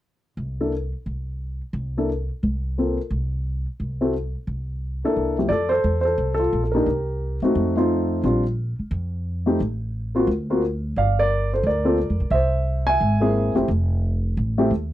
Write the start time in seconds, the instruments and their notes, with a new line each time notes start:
0.37 upright bass C2
0.60 grand piano A#3 D4 E4 A4
1.06 upright bass C2
1.73 upright bass C2
1.97 grand piano A#3 D4 E4 A4
2.43 upright bass C2
2.78 grand piano A#3 C4 F4 A4
3.11 upright bass C2
3.80 upright bass C2
4.01 grand piano C4 E4 F#4 A4
4.47 upright bass C2
5.04 grand piano A#3 D4 E4 A4
5.16 upright bass C2
5.38 grand piano F2 A3 C4 E4 G4
5.49 upright bass F2, grand piano A4 D5
5.69 grand piano A4 C5
5.84 upright bass E2
6.01 grand piano A4 C5
6.18 upright bass C2
6.34 grand piano A4
6.39 grand piano F4
6.53 upright bass A#1
6.64 grand piano A4
6.72 grand piano A#3 D4 G4 A#4
6.76 grand piano D#4
6.86 upright bass C2
7.42 upright bass E2, grand piano A3 C4 D#4 F#4
7.55 upright bass F2
7.77 grand piano A3 C4 D#4 F4
8.24 upright bass A#1, grand piano G3 C4 D4 F4
8.79 muted upright bass stroke
8.91 upright bass F2
9.46 grand piano A3 C4 D#4 G4
9.60 upright bass A1
10.15 grand piano A#3 C4 F4 F#4
10.27 upright bass D2
10.50 grand piano A#3 C4 F4 F#4
10.96 upright bass G1, grand piano D5 F5
11.19 grand piano A#4 D5
11.53 grand piano A4 C5
11.63 upright bass D2, grand piano A#4 D5
11.85 grand piano A#3 C4 F4 A4
12.10 upright bass F2
12.20 upright bass C#2
12.30 upright bass C2, grand piano C5 E5
12.87 grand piano E5 G#5
13.01 upright bass G#1
13.20 grand piano A#3 C4 E4 G#4
13.55 upright bass F#1, grand piano A3 C4 E4 G4
13.68 upright bass F1
14.37 upright bass A1
14.58 grand piano A3 C4 E4 G4
14.71 upright bass D#2